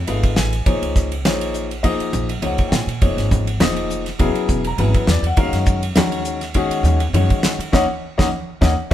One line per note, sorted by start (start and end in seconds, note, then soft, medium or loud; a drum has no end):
0.07 0.34 G#1 medium
0.07 0.51 A3 medium
0.07 0.50 D#4 medium
0.07 0.51 F4 medium
0.07 0.51 G#4 medium
0.07 0.51 B4 medium
0.07 0.37 F5 medium
0.07 ride medium
0.23 kick medium
0.23 ride medium
0.36 0.64 A1 medium
0.36 0.92 G#5 loud
0.36 snare loud
0.36 hi-hat pedal medium
0.53 ride medium
0.66 0.80 A#1 medium
0.66 1.09 F3 medium
0.66 1.09 A#3 medium
0.66 1.09 D#4 medium
0.66 1.09 G#4 medium
0.66 1.09 C#5 medium
0.66 kick medium
0.66 ride medium
0.66 muted conga soft
0.82 1.25 C#2 medium
0.82 ride medium
0.96 kick medium
0.96 snare soft
0.96 hi-hat pedal medium
1.12 ride medium
1.25 1.89 A#1 medium
1.25 1.68 F3 medium
1.25 1.68 A#3 medium
1.25 1.68 D#4 medium
1.25 1.69 G#4 medium
1.25 1.69 C#5 medium
1.25 snare loud
1.25 ride medium
1.25 high conga medium
1.41 ride medium
1.54 hi-hat pedal medium
1.71 ride medium
1.83 2.27 F3 medium
1.83 2.27 A#3 medium
1.83 2.27 D#4 medium
1.83 2.27 G#4 medium
1.83 2.27 D#5 loud
1.83 kick medium
1.83 ride medium
1.83 muted conga soft
2.00 muted upright bass stroke soft
2.00 ride medium
2.13 2.39 A#1 loud
2.13 hi-hat pedal medium
2.13 muted conga soft
2.13 high conga medium
2.29 ride medium
2.42 2.56 C#2 medium
2.42 2.86 F3 medium
2.42 2.86 A#3 medium
2.42 2.86 D#4 medium
2.42 2.86 G#4 medium
2.42 2.86 C#5 medium
2.42 2.72 F#5 medium
2.42 ride medium
2.42 high conga medium
2.58 kick medium
2.58 ride medium
2.68 2.72 G5 medium
2.72 2.86 A#2 medium
2.72 3.27 G#5 medium
2.72 snare loud
2.72 hi-hat pedal medium
2.87 2.99 A#2 medium
2.87 ride medium
3.01 3.16 F1 medium
3.01 3.45 F3 medium
3.01 3.45 A#3 medium
3.01 3.45 D#4 medium
3.01 3.45 G#4 medium
3.01 3.45 C#5 medium
3.01 kick loud
3.01 ride medium
3.01 muted conga soft
3.17 3.60 G#1 medium
3.17 snare soft
3.17 ride medium
3.31 kick medium
3.31 hi-hat pedal medium
3.31 high conga medium
3.47 ride medium
3.60 4.11 F1 medium
3.60 4.04 F3 medium
3.60 4.04 A#3 medium
3.60 4.04 D#4 medium
3.60 4.04 G#4 medium
3.60 4.04 D#5 loud
3.60 snare loud
3.60 ride medium
3.60 high conga loud
3.76 ride medium
3.90 hi-hat pedal medium
4.06 snare soft
4.06 ride medium
4.19 4.33 E1 loud
4.19 4.62 C#3 medium
4.19 4.63 F#3 medium
4.19 4.63 B3 medium
4.19 4.63 E4 medium
4.19 4.63 G#4 loud
4.19 kick medium
4.19 ride medium
4.19 muted conga soft
4.19 low conga medium
4.35 muted upright bass stroke soft
4.35 ride medium
4.48 4.74 E1 loud
4.48 kick medium
4.48 hi-hat pedal medium
4.64 4.79 A#5 medium
4.64 ride medium
4.78 4.92 G#1 medium
4.78 5.21 C#3 medium
4.78 5.22 F#3 medium
4.78 5.22 B3 medium
4.78 5.22 E4 medium
4.78 4.95 B4 medium
4.78 4.96 G#5 medium
4.78 ride medium
4.78 high conga medium
4.94 5.09 B4 medium
4.94 kick medium
4.94 ride medium
5.07 5.22 E2 medium
5.07 5.25 D5 loud
5.07 snare loud
5.07 hi-hat pedal medium
5.22 5.35 E2 medium
5.22 ride medium
5.27 5.38 F#5 medium
5.37 5.51 D#2 loud
5.37 5.80 D#3 medium
5.37 5.80 G#3 medium
5.37 5.80 C#4 medium
5.37 5.80 F#4 medium
5.37 5.80 A#4 loud
5.37 5.56 F5 medium
5.37 kick loud
5.37 ride medium
5.37 muted conga soft
5.53 5.96 F#2 medium
5.53 snare soft
5.53 ride medium
5.66 kick loud
5.66 hi-hat pedal loud
5.83 ride medium
5.96 6.60 D#2 medium
5.96 6.40 D#3 medium
5.96 6.40 G#3 medium
5.96 6.39 C#4 medium
5.96 6.40 F#4 medium
5.96 6.40 A#4 medium
5.96 snare loud
5.96 ride medium
5.96 high conga loud
6.12 ride medium
6.25 hi-hat pedal medium
6.41 snare soft
6.41 ride medium
6.54 6.98 D#3 medium
6.54 6.98 G#3 medium
6.54 6.98 C#4 medium
6.54 6.98 F#4 medium
6.54 6.99 G#4 loud
6.54 kick medium
6.54 ride medium
6.54 muted conga soft
6.70 muted upright bass stroke soft
6.70 ride medium
6.83 7.09 D#2 loud
6.83 hi-hat pedal medium
6.83 muted conga soft
6.83 high conga medium
7.00 ride medium
7.13 7.27 F#2 loud
7.13 7.57 D#3 medium
7.13 7.57 G#3 medium
7.13 7.57 C#4 medium
7.13 7.57 F#4 medium
7.13 7.57 C#5 medium
7.13 ride medium
7.13 high conga medium
7.30 kick medium
7.30 ride medium
7.43 7.57 D#3 medium
7.43 snare loud
7.43 hi-hat pedal medium
7.43 muted conga soft
7.59 7.71 D#3 medium
7.59 ride medium
7.72 7.85 D#2 loud
7.72 7.83 A#3 medium
7.72 7.83 C#4 loud
7.72 7.83 D#4 loud
7.72 7.84 C#5 loud
7.72 7.84 D#5 loud
7.72 7.84 F#5 loud
7.72 kick medium
7.72 snare medium
7.72 high conga medium
8.18 8.29 D#2 loud
8.18 8.27 A#3 medium
8.18 8.27 C#4 loud
8.18 8.27 D#4 loud
8.18 8.27 C#5 medium
8.18 8.27 D#5 loud
8.18 8.27 F#5 medium
8.18 kick medium
8.18 snare loud
8.18 high conga loud
8.61 8.73 D#2 loud
8.61 8.72 A#3 medium
8.61 8.72 C#4 medium
8.61 8.72 D#4 medium
8.61 8.72 C#5 medium
8.61 8.72 D#5 medium
8.61 8.72 F#5 loud
8.61 kick loud
8.61 snare medium
8.61 high conga medium
8.91 8.94 A#3 medium
8.91 8.94 D#4 medium